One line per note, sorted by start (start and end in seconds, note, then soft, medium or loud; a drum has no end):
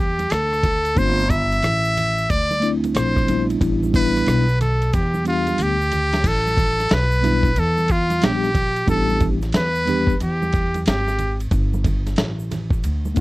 0.00 0.28 E2 medium
0.00 0.33 G4 medium
0.19 ride soft
0.19 high conga medium
0.19 shaker soft
0.30 0.94 D2 medium
0.30 1.00 A4 medium
0.30 cross-stick loud
0.30 hi-hat pedal medium
0.30 ride medium
0.30 shaker medium
0.53 cross-stick soft
0.53 shaker soft
0.63 kick medium
0.63 ride medium
0.63 low conga medium
0.63 shaker soft
0.85 ride soft
0.85 shaker soft
0.95 1.59 G1 loud
0.95 1.22 A3 medium
0.95 1.23 C4 soft
0.95 1.23 D4 medium
0.95 1.24 F4 medium
0.95 1.31 C5 loud
0.95 kick loud
0.95 ride soft
0.95 shaker medium
1.19 shaker soft
1.30 2.32 E5 loud
1.30 kick medium
1.30 ride medium
1.30 low conga medium
1.30 shaker medium
1.52 ride soft
1.52 shaker soft
1.63 2.26 A1 medium
1.63 cross-stick medium
1.63 hi-hat pedal soft
1.63 ride medium
1.63 shaker medium
1.84 shaker soft
1.97 ride medium
1.97 low conga medium
1.97 shaker soft
2.18 shaker soft
2.30 2.92 D2 medium
2.30 2.70 D5 loud
2.30 kick medium
2.30 ride medium
2.30 shaker medium
2.51 high conga medium
2.51 shaker soft
2.60 3.55 A3 medium
2.60 2.70 B3 soft
2.60 3.28 D4 medium
2.60 3.30 E4 medium
2.60 ride medium
2.60 shaker soft
2.68 3.59 C4 medium
2.84 ride soft
2.84 high conga medium
2.84 shaker soft
2.95 3.58 A#1 medium
2.95 3.46 C5 medium
2.95 cross-stick loud
2.95 hi-hat pedal medium
2.95 ride medium
2.95 shaker medium
3.16 kick medium
3.16 cross-stick soft
3.16 shaker soft
3.27 3.92 G3 medium
3.27 3.92 B3 medium
3.27 3.93 D4 medium
3.27 3.95 E4 medium
3.27 ride medium
3.27 low conga medium
3.27 shaker soft
3.50 ride soft
3.50 shaker soft
3.61 4.23 A1 loud
3.61 kick medium
3.61 ride medium
3.61 shaker medium
3.83 high conga medium
3.83 shaker soft
3.93 4.43 G3 medium
3.93 4.44 B3 medium
3.93 4.44 D4 medium
3.93 4.45 E4 medium
3.93 4.57 B4 loud
3.93 kick loud
3.93 ride soft
3.93 high conga medium
3.93 low conga medium
3.93 shaker medium
4.16 cross-stick soft
4.16 ride soft
4.16 shaker soft
4.26 4.89 B1 medium
4.26 cross-stick medium
4.26 hi-hat pedal soft
4.26 ride medium
4.26 high conga soft
4.26 shaker medium
4.48 shaker soft
4.61 4.95 A4 medium
4.61 cross-stick soft
4.61 ride medium
4.61 low conga medium
4.61 shaker soft
4.82 ride soft
4.82 shaker soft
4.93 5.56 E2 medium
4.93 5.26 G4 medium
4.93 kick medium
4.93 ride medium
4.93 shaker medium
5.14 high conga medium
5.14 shaker soft
5.24 5.75 G3 medium
5.24 5.75 B3 soft
5.24 5.76 D4 medium
5.24 5.64 F4 medium
5.24 ride medium
5.24 shaker soft
5.28 5.77 G4 medium
5.47 ride soft
5.47 high conga medium
5.47 shaker soft
5.58 6.21 D2 medium
5.58 hi-hat pedal medium
5.58 ride medium
5.58 shaker medium
5.62 6.29 G4 medium
5.81 shaker soft
5.92 ride medium
5.92 low conga medium
5.92 shaker soft
6.13 snare medium
6.13 ride soft
6.13 shaker soft
6.24 6.87 A1 loud
6.24 6.95 A4 medium
6.24 kick loud
6.24 crash loud
6.24 ride medium
6.24 shaker medium
6.47 high conga medium
6.47 shaker soft
6.57 kick medium
6.57 ride soft
6.57 high conga medium
6.57 low conga medium
6.57 shaker medium
6.80 snare soft
6.80 ride soft
6.80 shaker soft
6.89 7.54 B1 medium
6.89 snare loud
6.89 hi-hat pedal soft
6.89 ride medium
6.89 high conga soft
6.89 shaker medium
6.94 7.61 B4 medium
7.11 shaker soft
7.21 7.48 G3 medium
7.21 7.49 B3 medium
7.21 7.49 D4 medium
7.21 7.50 E4 medium
7.21 snare soft
7.21 ride medium
7.21 low conga medium
7.21 shaker soft
7.43 kick loud
7.43 shaker soft
7.56 8.19 E2 loud
7.56 7.93 A4 medium
7.56 ride medium
7.56 shaker medium
7.78 high conga medium
7.78 shaker soft
7.88 8.26 F4 medium
7.88 kick medium
7.88 ride medium
7.88 shaker soft
8.10 ride soft
8.10 high conga medium
8.10 shaker soft
8.21 8.85 A#1 medium
8.21 8.48 G3 medium
8.21 8.48 B3 medium
8.21 8.49 D4 medium
8.21 8.89 G4 medium
8.21 8.50 G4 medium
8.21 snare loud
8.21 hi-hat pedal medium
8.21 ride medium
8.21 shaker medium
8.43 snare soft
8.43 shaker soft
8.55 kick medium
8.55 ride medium
8.55 low conga medium
8.55 shaker soft
8.76 ride soft
8.76 shaker soft
8.86 9.51 A1 loud
8.86 9.37 G3 medium
8.86 9.38 B3 medium
8.86 9.38 D4 medium
8.86 9.39 G4 medium
8.86 9.27 A4 medium
8.86 kick loud
8.86 ride medium
8.86 shaker soft
9.09 high conga medium
9.09 shaker soft
9.20 kick loud
9.20 ride medium
9.20 high conga soft
9.20 low conga medium
9.20 shaker medium
9.42 snare soft
9.42 ride soft
9.42 shaker soft
9.53 10.17 E2 medium
9.53 10.17 B4 loud
9.53 snare medium
9.53 hi-hat pedal medium
9.53 ride medium
9.53 high conga soft
9.53 shaker medium
9.75 shaker soft
9.86 10.12 G3 medium
9.86 10.13 B3 medium
9.86 10.14 D4 medium
9.86 10.14 G4 medium
9.86 ride medium
9.86 low conga medium
9.86 shaker soft
10.07 kick loud
10.07 shaker soft
10.20 10.83 E2 loud
10.20 10.83 G4 medium
10.20 ride medium
10.20 shaker medium
10.42 high conga medium
10.42 shaker soft
10.52 kick medium
10.52 ride medium
10.52 shaker soft
10.74 ride soft
10.74 high conga medium
10.74 shaker soft
10.86 11.49 G#1 medium
10.86 11.38 G4 medium
10.86 snare loud
10.86 hi-hat pedal medium
10.86 ride medium
10.86 shaker medium
11.07 snare soft
11.07 shaker soft
11.19 ride medium
11.19 low conga medium
11.19 shaker soft
11.40 ride soft
11.40 shaker soft
11.51 12.14 G1 loud
11.51 kick loud
11.51 ride medium
11.51 shaker medium
11.74 high conga medium
11.74 shaker soft
11.84 kick medium
11.84 ride medium
11.84 high conga medium
11.84 low conga medium
11.84 shaker medium
12.07 snare soft
12.07 ride soft
12.07 shaker soft
12.16 12.81 A1 medium
12.16 snare loud
12.16 hi-hat pedal medium
12.16 ride medium
12.16 high conga soft
12.16 shaker medium
12.39 shaker soft
12.51 snare soft
12.51 ride medium
12.51 low conga medium
12.51 shaker soft
12.70 kick loud
12.70 shaker soft
12.84 13.20 D2 medium
12.84 ride medium
12.84 shaker medium
13.05 high conga medium
13.05 shaker soft
13.15 13.20 A3 medium
13.15 13.20 C4 medium
13.15 13.20 D4 medium
13.15 kick medium
13.15 ride medium
13.15 shaker soft